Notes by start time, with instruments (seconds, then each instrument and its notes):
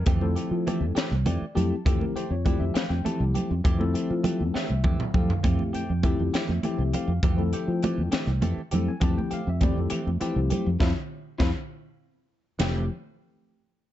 0.05 fretless electric bass F2, clean electric guitar E3 A3 C4 G4, tine electric piano A4, kick, closed hi-hat, muted conga, low conga
0.21 tine electric piano F3 A3 C4 E4 A4 C5, high conga, low conga
0.35 clean electric guitar A3 C4 G4, closed hi-hat
0.51 fretless electric bass F3
0.67 clean electric guitar E3 A3 C4 G4, closed hi-hat, muted conga, low conga
0.80 fretless electric bass F2, low conga
0.95 clean electric guitar E3 A3 C4 G4, muted fretless electric bass stroke, snare, closed hi-hat
1.11 fretless electric bass C2, high conga
1.26 fretless electric bass F2, clean electric guitar E3 A3 C4 G4, tine electric piano D5, closed hi-hat, muted conga
1.42 muted fretless electric bass stroke, low conga
1.55 fretless electric bass F2, tine electric piano F3 A3 C4 E4 G4 A5, clean electric guitar A3 C4 G4, closed hi-hat, low conga
1.85 fretless electric bass F2, clean electric guitar E3 A3 C4 G4, tine electric piano F3 A3 C4 E4 G4 A4, kick, closed hi-hat, muted conga, low conga
2.00 tine electric piano A#4, high conga, low conga
2.15 clean electric guitar A3 C4 G4, tine electric piano C5, muted fretless electric bass stroke, closed hi-hat, low conga
2.30 fretless electric bass F2, tine electric piano C#5
2.45 clean electric guitar E3 A3 C4 G4, tine electric piano F3 A3 C4 E4 G4 D5, kick, closed hi-hat, muted conga, low conga
2.60 fretless electric bass F2, tine electric piano E5
2.74 clean electric guitar E3 A3 C4 G4, tine electric piano F5, muted fretless electric bass stroke, snare, closed hi-hat
2.90 fretless electric bass F2, tine electric piano G5, high conga
3.04 clean electric guitar E3 A3 C4 G4, tine electric piano F3 A3 C4 E4 G4 A5, muted fretless electric bass stroke, closed hi-hat, muted conga
3.20 fretless electric bass C2, low conga
3.35 clean electric guitar A3 C4 G4, muted fretless electric bass stroke, closed hi-hat, low conga
3.50 fretless electric bass F2
3.64 fretless electric bass F2, clean electric guitar E3 A3 C4 G4, kick, closed hi-hat, muted conga, low conga
3.79 tine electric piano F3 A3 C4 E4 A4, high conga, low conga
3.94 clean electric guitar A3 C4 G4, closed hi-hat
4.10 fretless electric bass F3, low conga
4.24 clean electric guitar E3 A3 C4 G4, closed hi-hat, muted conga, low conga
4.40 fretless electric bass F2
4.54 clean electric guitar E3 A3 C4 G4, tine electric piano E5, muted fretless electric bass stroke, snare, low conga
4.70 fretless electric bass C2, high conga, low conga
4.84 fretless electric bass F2, clean electric guitar E3 A3 C4 G4, kick, muted conga, low conga
5.00 muted fretless electric bass stroke, mid tom, low conga
5.13 fretless electric bass F2, tine electric piano F3 A3 C4 E4 A4 F5, clean electric guitar A3 C4 G4, kick, low conga
5.30 floor tom
5.43 fretless electric bass F2, clean electric guitar E3 A3 C4 G4, tine electric piano F3 A3 C4 E4 G4, kick, closed hi-hat, muted conga, low conga
5.59 high conga, low conga
5.73 clean electric guitar A3 C4 G4, tine electric piano G5, muted fretless electric bass stroke, closed hi-hat, low conga
5.89 fretless electric bass F2
6.03 clean electric guitar E3 A3 C4 G4, tine electric piano F3 A3 C4 E4 G4, kick, closed hi-hat, muted conga, low conga
6.19 fretless electric bass F2, low conga
6.34 clean electric guitar E3 A3 C4 G4, tine electric piano E5, muted fretless electric bass stroke, snare, closed hi-hat
6.49 fretless electric bass F2, high conga
6.63 clean electric guitar E3 A3 C4 G4, tine electric piano F3 A3 C4 E4 G4, muted fretless electric bass stroke, closed hi-hat, muted conga
6.78 fretless electric bass C2, low conga
6.93 clean electric guitar A3 C4 G4, tine electric piano F5, muted fretless electric bass stroke, closed hi-hat, low conga
7.08 fretless electric bass F2
7.23 fretless electric bass F2, clean electric guitar E3 A3 C4 G4, kick, closed hi-hat, muted conga, low conga
7.37 tine electric piano F3 A3 C4 E4 A4, high conga, low conga
7.53 clean electric guitar A3 C4 G4, tine electric piano G5, closed hi-hat, low conga
7.68 fretless electric bass F3
7.83 clean electric guitar E3 A3 C4 G4, closed hi-hat, muted conga, low conga
7.98 fretless electric bass F2, low conga
8.12 clean electric guitar E3 A3 C4 G4, muted fretless electric bass stroke, snare, closed hi-hat
8.27 fretless electric bass C2, high conga
8.41 fretless electric bass F2, clean electric guitar E3 A3 C4 G4, closed hi-hat, muted conga
8.57 muted fretless electric bass stroke, low conga
8.71 fretless electric bass F2, tine electric piano F3 A3 C4 E4 A4, clean electric guitar A3 C4 G4, closed hi-hat, low conga
8.88 tine electric piano G#5
9.00 fretless electric bass F2, clean electric guitar E3 A3 C4 G4, tine electric piano F3 A3 C4 E4 G4 A5, kick, closed hi-hat, muted conga, low conga
9.18 tine electric piano G5, high conga, low conga
9.31 clean electric guitar A3 C4 G4, tine electric piano F5, muted fretless electric bass stroke, closed hi-hat, low conga
9.47 fretless electric bass F2, tine electric piano E5
9.61 clean electric guitar E3 A3 C4 G4, tine electric piano F3 A3 C4 E4 G4 D5, kick, closed hi-hat, muted conga, low conga
9.77 fretless electric bass F2, tine electric piano A4, low conga
9.90 clean electric guitar E3 A3 C4 G4, muted fretless electric bass stroke, closed hi-hat
10.07 fretless electric bass F2, high conga
10.20 clean electric guitar E3 A3 C4 G4, tine electric piano F3 A3 C4 E4 G4, muted fretless electric bass stroke, closed hi-hat
10.36 fretless electric bass C2
10.50 clean electric guitar A3 C4 G4, muted fretless electric bass stroke, closed hi-hat, low conga
10.66 fretless electric bass F2
10.80 fretless electric bass F2, tine electric piano C4 E4 F4 E5 F5 A5, clean electric guitar C4 E4 F4, kick, snare, muted conga
11.38 fretless electric bass F2, tine electric piano C4 E4 F4 E5 F5 A5, clean electric guitar C4 E4 F4, kick, snare, muted conga
12.59 fretless electric bass F1, clean electric guitar E3 A3 C4 G4, tine electric piano F3 A3 C4 E4 G4, snare, ride bell, muted conga